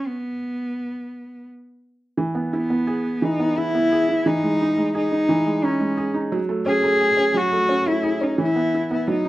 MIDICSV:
0, 0, Header, 1, 3, 480
1, 0, Start_track
1, 0, Key_signature, 4, "major"
1, 0, Tempo, 698487
1, 45, Time_signature, 3, 2, 24, 8
1, 2446, Tempo, 689655
1, 6431, End_track
2, 0, Start_track
2, 0, Title_t, "Cello"
2, 0, Program_c, 0, 42
2, 47, Note_on_c, 0, 59, 70
2, 1011, Note_off_c, 0, 59, 0
2, 1752, Note_on_c, 0, 59, 77
2, 2227, Note_on_c, 0, 63, 87
2, 2237, Note_off_c, 0, 59, 0
2, 2455, Note_on_c, 0, 64, 101
2, 2466, Note_off_c, 0, 63, 0
2, 2938, Note_on_c, 0, 63, 96
2, 2949, Note_off_c, 0, 64, 0
2, 3413, Note_off_c, 0, 63, 0
2, 3422, Note_on_c, 0, 63, 94
2, 3896, Note_on_c, 0, 61, 80
2, 3906, Note_off_c, 0, 63, 0
2, 4249, Note_off_c, 0, 61, 0
2, 4606, Note_on_c, 0, 68, 100
2, 5097, Note_on_c, 0, 66, 97
2, 5108, Note_off_c, 0, 68, 0
2, 5451, Note_on_c, 0, 64, 85
2, 5461, Note_off_c, 0, 66, 0
2, 5696, Note_on_c, 0, 63, 77
2, 5707, Note_off_c, 0, 64, 0
2, 5809, Note_off_c, 0, 63, 0
2, 5831, Note_on_c, 0, 64, 90
2, 6153, Note_off_c, 0, 64, 0
2, 6184, Note_on_c, 0, 64, 79
2, 6286, Note_off_c, 0, 64, 0
2, 6301, Note_on_c, 0, 63, 86
2, 6431, Note_off_c, 0, 63, 0
2, 6431, End_track
3, 0, Start_track
3, 0, Title_t, "Felt piano"
3, 0, Program_c, 1, 0
3, 1494, Note_on_c, 1, 52, 72
3, 1614, Note_on_c, 1, 59, 50
3, 1740, Note_on_c, 1, 64, 55
3, 1846, Note_off_c, 1, 59, 0
3, 1857, Note_on_c, 1, 59, 52
3, 1973, Note_on_c, 1, 68, 63
3, 2093, Note_off_c, 1, 64, 0
3, 2203, Note_off_c, 1, 52, 0
3, 2213, Note_on_c, 1, 52, 69
3, 2323, Note_off_c, 1, 59, 0
3, 2333, Note_on_c, 1, 59, 55
3, 2456, Note_on_c, 1, 64, 55
3, 2566, Note_off_c, 1, 59, 0
3, 2576, Note_on_c, 1, 59, 51
3, 2686, Note_off_c, 1, 68, 0
3, 2696, Note_on_c, 1, 68, 59
3, 2803, Note_off_c, 1, 64, 0
3, 2814, Note_on_c, 1, 64, 55
3, 2922, Note_off_c, 1, 52, 0
3, 2932, Note_on_c, 1, 52, 75
3, 2978, Note_off_c, 1, 64, 0
3, 2979, Note_off_c, 1, 59, 0
3, 2980, Note_off_c, 1, 68, 0
3, 3054, Note_on_c, 1, 56, 52
3, 3179, Note_on_c, 1, 63, 55
3, 3281, Note_off_c, 1, 56, 0
3, 3291, Note_on_c, 1, 56, 54
3, 3412, Note_on_c, 1, 68, 67
3, 3519, Note_off_c, 1, 63, 0
3, 3530, Note_on_c, 1, 63, 51
3, 3639, Note_off_c, 1, 52, 0
3, 3649, Note_on_c, 1, 52, 74
3, 3758, Note_off_c, 1, 56, 0
3, 3768, Note_on_c, 1, 56, 57
3, 3880, Note_off_c, 1, 63, 0
3, 3890, Note_on_c, 1, 63, 62
3, 3994, Note_off_c, 1, 56, 0
3, 4005, Note_on_c, 1, 56, 53
3, 4116, Note_off_c, 1, 68, 0
3, 4126, Note_on_c, 1, 68, 64
3, 4234, Note_off_c, 1, 63, 0
3, 4245, Note_on_c, 1, 63, 57
3, 4364, Note_off_c, 1, 52, 0
3, 4367, Note_on_c, 1, 54, 80
3, 4411, Note_off_c, 1, 56, 0
3, 4411, Note_off_c, 1, 63, 0
3, 4412, Note_off_c, 1, 68, 0
3, 4485, Note_on_c, 1, 57, 58
3, 4604, Note_on_c, 1, 61, 61
3, 4715, Note_off_c, 1, 57, 0
3, 4725, Note_on_c, 1, 57, 56
3, 4845, Note_on_c, 1, 68, 64
3, 4948, Note_off_c, 1, 61, 0
3, 4958, Note_on_c, 1, 61, 50
3, 5068, Note_off_c, 1, 54, 0
3, 5079, Note_on_c, 1, 54, 72
3, 5191, Note_off_c, 1, 57, 0
3, 5201, Note_on_c, 1, 57, 58
3, 5310, Note_off_c, 1, 61, 0
3, 5321, Note_on_c, 1, 61, 58
3, 5430, Note_off_c, 1, 57, 0
3, 5441, Note_on_c, 1, 57, 51
3, 5547, Note_off_c, 1, 68, 0
3, 5558, Note_on_c, 1, 68, 60
3, 5674, Note_off_c, 1, 61, 0
3, 5684, Note_on_c, 1, 61, 53
3, 5800, Note_off_c, 1, 54, 0
3, 5802, Note_on_c, 1, 52, 75
3, 5848, Note_off_c, 1, 68, 0
3, 5849, Note_off_c, 1, 57, 0
3, 5851, Note_off_c, 1, 61, 0
3, 5927, Note_on_c, 1, 59, 52
3, 6055, Note_on_c, 1, 64, 57
3, 6160, Note_off_c, 1, 59, 0
3, 6170, Note_on_c, 1, 59, 53
3, 6283, Note_off_c, 1, 52, 0
3, 6286, Note_on_c, 1, 54, 73
3, 6335, Note_off_c, 1, 59, 0
3, 6337, Note_off_c, 1, 64, 0
3, 6406, Note_on_c, 1, 63, 50
3, 6431, Note_off_c, 1, 54, 0
3, 6431, Note_off_c, 1, 63, 0
3, 6431, End_track
0, 0, End_of_file